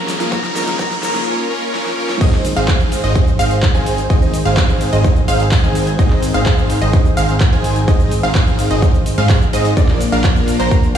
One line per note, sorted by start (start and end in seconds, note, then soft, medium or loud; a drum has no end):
0.00 0.18 C#2 medium
0.00 1.23 F3 medium
0.00 1.24 G#3 medium
0.00 0.10 A#3 medium
0.00 0.10 C#4 medium
0.00 0.30 C#4 medium
0.00 0.10 F4 medium
0.00 0.10 A#4 medium
0.00 0.10 C#5 medium
0.00 riser medium
0.08 snare loud
0.08 open hi-hat medium
0.08 shaker medium
0.20 0.30 C#2 loud
0.20 0.30 A#3 medium
0.20 0.30 C#4 medium
0.20 0.30 F4 medium
0.20 0.30 A#4 medium
0.20 0.30 F5 loud
0.20 snare medium
0.20 closed hi-hat medium
0.20 shaker soft
0.32 0.53 C#2 loud
0.32 0.54 A#3 medium
0.32 0.54 C#4 medium
0.32 1.26 D#4 medium
0.32 0.54 F4 medium
0.32 0.54 C#5 medium
0.32 0.52 A#5 loud
0.32 kick loud
0.32 snare loud
0.32 closed hi-hat medium
0.32 shaker soft
0.44 snare medium
0.44 closed hi-hat soft
0.44 shaker soft
0.56 0.77 C#2 loud
0.56 0.77 A#3 medium
0.56 0.77 C#4 medium
0.56 0.77 F4 medium
0.56 0.77 A#4 medium
0.56 0.77 C#5 medium
0.56 0.75 A#5 loud
0.56 snare loud
0.56 open hi-hat loud
0.56 shaker medium
0.67 snare medium
0.67 closed hi-hat medium
0.67 shaker soft
0.79 1.01 C#2 loud
0.79 1.01 A#3 medium
0.79 1.01 C#4 medium
0.79 1.01 A#4 medium
0.79 1.01 C#5 medium
0.79 0.99 A#5 loud
0.79 kick loud
0.79 snare loud
0.79 closed hi-hat medium
0.79 shaker soft
0.91 snare medium
0.91 closed hi-hat soft
0.91 shaker soft
1.03 1.24 C#2 loud
1.03 1.25 A#3 medium
1.03 1.25 C#4 medium
1.03 1.25 F4 medium
1.03 1.25 A#4 medium
1.03 1.25 C#5 medium
1.03 1.23 A#5 loud
1.03 snare loud
1.03 open hi-hat medium
1.03 shaker medium
1.15 snare medium
1.15 closed hi-hat medium
1.15 shaker soft
1.27 1.48 A#3 medium
1.27 1.48 C#4 medium
1.27 1.48 F4 medium
1.27 1.48 A#4 medium
1.27 1.48 C#5 medium
1.50 1.72 A#3 medium
1.50 1.72 C#4 medium
1.50 1.72 F4 medium
1.50 1.72 A#4 medium
1.50 1.72 C#5 medium
1.74 1.96 A#3 medium
1.74 1.96 C#4 medium
1.74 1.96 F4 medium
1.74 1.96 A#4 medium
1.74 1.96 C#5 medium
1.74 snare medium
1.86 snare medium
1.97 2.19 A#3 medium
1.97 2.19 C#4 medium
1.97 2.19 F4 medium
1.97 2.19 A#4 medium
1.97 2.19 C#5 medium
2.09 snare medium
2.21 2.54 G#1 loud
2.21 9.73 D#3 medium
2.21 9.73 G#3 medium
2.21 2.46 C4 medium
2.21 9.73 C4 medium
2.21 2.46 D#4 medium
2.21 2.46 C5 medium
2.21 2.46 D#5 medium
2.21 kick loud
2.21 closed hi-hat medium
2.21 crash loud
2.21 shaker soft
2.33 clap soft
2.33 closed hi-hat soft
2.45 open hi-hat loud
2.45 shaker medium
2.56 3.01 G#1 loud
2.56 3.01 C4 medium
2.56 3.01 D#4 medium
2.56 3.01 G#4 medium
2.56 3.01 C5 medium
2.56 3.01 F5 loud
2.56 closed hi-hat medium
2.56 shaker soft
2.68 kick loud
2.68 clap loud
2.68 closed hi-hat medium
2.68 shaker soft
2.80 closed hi-hat soft
2.80 shaker soft
2.92 open hi-hat loud
2.92 shaker medium
3.04 3.37 G#1 loud
3.04 3.29 C4 medium
3.04 3.29 D#4 medium
3.04 3.29 G#4 medium
3.04 3.29 C5 medium
3.04 3.29 D#5 medium
3.04 closed hi-hat medium
3.04 shaker soft
3.16 kick loud
3.16 closed hi-hat medium
3.16 shaker soft
3.27 closed hi-hat soft
3.27 shaker soft
3.39 3.72 G#1 loud
3.39 3.55 C4 loud
3.39 3.55 D#4 medium
3.39 3.55 G#4 medium
3.39 3.55 C5 medium
3.39 3.55 F5 loud
3.39 open hi-hat loud
3.39 shaker medium
3.51 closed hi-hat medium
3.51 shaker soft
3.63 kick loud
3.63 clap loud
3.63 closed hi-hat medium
3.63 shaker soft
3.75 4.08 G#1 loud
3.75 4.00 C4 medium
3.75 4.00 D#4 medium
3.75 4.00 G#4 medium
3.75 4.00 C5 medium
3.75 4.00 G#5 medium
3.75 closed hi-hat soft
3.75 shaker soft
3.86 open hi-hat loud
3.86 shaker medium
3.98 closed hi-hat medium
3.98 shaker soft
4.10 4.43 G#1 loud
4.10 4.35 C4 medium
4.10 4.35 D#4 medium
4.10 4.35 G#4 medium
4.10 4.35 C5 medium
4.10 4.35 D#5 medium
4.10 kick loud
4.10 closed hi-hat medium
4.10 shaker soft
4.22 closed hi-hat soft
4.22 shaker soft
4.34 open hi-hat loud
4.34 shaker medium
4.45 4.90 G#1 loud
4.45 4.90 C4 medium
4.45 4.90 D#4 medium
4.45 4.90 G#4 medium
4.45 4.90 C5 medium
4.45 4.90 F5 loud
4.45 closed hi-hat medium
4.45 shaker soft
4.57 kick loud
4.57 clap loud
4.57 closed hi-hat medium
4.57 shaker soft
4.69 closed hi-hat soft
4.69 shaker soft
4.81 open hi-hat loud
4.81 shaker medium
4.93 5.26 G#1 medium
4.93 5.18 C4 medium
4.93 5.18 D#4 medium
4.93 5.18 G#4 medium
4.93 5.18 C5 medium
4.93 5.18 D#5 medium
4.93 closed hi-hat medium
4.93 shaker soft
5.04 kick loud
5.04 closed hi-hat medium
5.04 shaker soft
5.16 closed hi-hat soft
5.16 shaker soft
5.28 5.61 G#1 medium
5.28 5.44 C4 loud
5.28 5.44 D#4 medium
5.28 5.44 G#4 medium
5.28 5.44 C5 medium
5.28 5.44 F5 loud
5.28 open hi-hat loud
5.28 shaker medium
5.40 closed hi-hat medium
5.40 shaker soft
5.51 kick loud
5.51 clap loud
5.51 open hi-hat medium
5.51 shaker soft
5.63 5.97 G#1 loud
5.63 5.89 C4 medium
5.63 5.89 D#4 medium
5.63 5.89 G#4 medium
5.63 5.89 C5 medium
5.63 5.89 G#5 medium
5.63 closed hi-hat soft
5.63 shaker soft
5.75 open hi-hat loud
5.75 shaker medium
5.87 closed hi-hat medium
5.87 shaker soft
5.99 6.32 G#1 loud
5.99 6.24 C4 medium
5.99 6.24 D#4 medium
5.99 6.24 G#4 medium
5.99 6.24 C5 medium
5.99 6.24 D#5 medium
5.99 kick loud
5.99 closed hi-hat medium
5.99 shaker soft
6.10 clap soft
6.10 closed hi-hat soft
6.22 open hi-hat loud
6.22 shaker medium
6.34 6.79 G#1 loud
6.34 6.79 C4 medium
6.34 6.79 D#4 medium
6.34 6.79 G#4 medium
6.34 6.79 C5 medium
6.34 6.79 F5 loud
6.34 6.79 F5 medium
6.34 closed hi-hat medium
6.34 shaker soft
6.46 kick loud
6.46 clap loud
6.46 closed hi-hat medium
6.46 shaker soft
6.58 closed hi-hat soft
6.58 shaker soft
6.70 open hi-hat loud
6.70 shaker medium
6.82 7.15 G#1 loud
6.82 7.07 C4 medium
6.82 7.07 D#4 medium
6.82 7.07 G#4 medium
6.82 7.07 C5 medium
6.82 7.07 D#5 medium
6.82 closed hi-hat medium
6.82 shaker soft
6.93 kick loud
6.93 closed hi-hat medium
6.93 shaker soft
7.05 closed hi-hat soft
7.05 shaker soft
7.17 7.50 G#1 medium
7.17 7.33 C4 loud
7.17 7.33 D#4 medium
7.17 7.33 G#4 medium
7.17 7.33 C5 medium
7.17 7.33 F5 loud
7.17 open hi-hat loud
7.17 shaker medium
7.29 closed hi-hat medium
7.29 shaker soft
7.40 kick loud
7.40 clap loud
7.40 closed hi-hat medium
7.40 shaker soft
7.52 7.86 G#1 loud
7.52 7.78 C4 medium
7.52 7.78 D#4 medium
7.52 7.78 G#4 medium
7.52 7.78 C5 medium
7.52 7.78 G#5 medium
7.52 closed hi-hat soft
7.52 shaker soft
7.64 open hi-hat loud
7.64 shaker medium
7.76 closed hi-hat medium
7.76 shaker soft
7.88 8.21 G#1 loud
7.88 8.13 C4 medium
7.88 8.13 D#4 medium
7.88 8.13 G#4 medium
7.88 8.13 C5 medium
7.88 8.13 D#5 medium
7.88 kick loud
7.88 closed hi-hat medium
7.88 shaker soft
8.00 closed hi-hat soft
8.00 shaker soft
8.11 open hi-hat loud
8.11 shaker medium
8.23 8.68 G#1 loud
8.23 8.68 C4 medium
8.23 8.68 D#4 medium
8.23 8.68 G#4 medium
8.23 8.68 C5 medium
8.23 8.68 F5 loud
8.23 closed hi-hat medium
8.23 shaker soft
8.35 kick loud
8.35 clap loud
8.35 closed hi-hat soft
8.35 shaker soft
8.47 closed hi-hat soft
8.47 shaker soft
8.59 open hi-hat loud
8.59 shaker medium
8.71 9.15 G#1 loud
8.71 8.96 C4 medium
8.71 8.96 D#4 medium
8.71 8.96 G#4 medium
8.71 8.96 C5 medium
8.71 8.96 D#5 medium
8.71 closed hi-hat medium
8.71 shaker soft
8.82 kick loud
8.82 closed hi-hat medium
8.82 shaker soft
8.94 closed hi-hat soft
8.94 shaker soft
9.06 open hi-hat loud
9.06 shaker medium
9.18 9.51 G#2 loud
9.18 9.34 C4 medium
9.18 9.34 D#4 medium
9.18 9.34 G#4 medium
9.18 9.34 C5 medium
9.18 9.34 F5 loud
9.18 closed hi-hat soft
9.18 shaker soft
9.29 kick loud
9.29 clap loud
9.29 open hi-hat medium
9.29 shaker soft
9.41 closed hi-hat soft
9.41 shaker soft
9.53 9.75 G#2 loud
9.53 9.69 C4 medium
9.53 9.69 D#4 medium
9.53 9.69 G#4 medium
9.53 9.69 C5 medium
9.53 9.69 D#5 medium
9.53 open hi-hat loud
9.53 shaker medium
9.65 closed hi-hat medium
9.65 shaker soft
9.77 10.10 A#1 loud
9.77 10.98 F3 medium
9.77 10.98 A#3 medium
9.77 10.02 A#3 medium
9.77 10.98 D4 medium
9.77 10.02 D4 medium
9.77 10.02 F4 medium
9.77 10.02 A#4 medium
9.77 10.02 D5 medium
9.77 kick loud
9.77 closed hi-hat medium
9.77 shaker soft
9.89 clap soft
9.89 closed hi-hat soft
10.01 open hi-hat loud
10.01 shaker medium
10.12 10.57 A#1 loud
10.12 10.57 A#3 medium
10.12 10.57 D4 medium
10.12 10.57 F4 medium
10.12 10.57 A#4 medium
10.12 10.57 F5 loud
10.12 shaker soft
10.24 kick loud
10.24 clap loud
10.24 closed hi-hat soft
10.24 shaker soft
10.36 closed hi-hat soft
10.36 shaker soft
10.48 open hi-hat loud
10.48 shaker medium
10.60 10.93 A#1 loud
10.60 10.85 A#3 medium
10.60 10.85 D4 medium
10.60 10.85 F4 medium
10.60 10.85 A#4 medium
10.60 10.85 C5 medium
10.60 10.79 A#5 loud
10.60 closed hi-hat medium
10.60 shaker soft
10.71 kick loud
10.71 closed hi-hat medium
10.71 shaker soft
10.83 closed hi-hat soft
10.83 shaker soft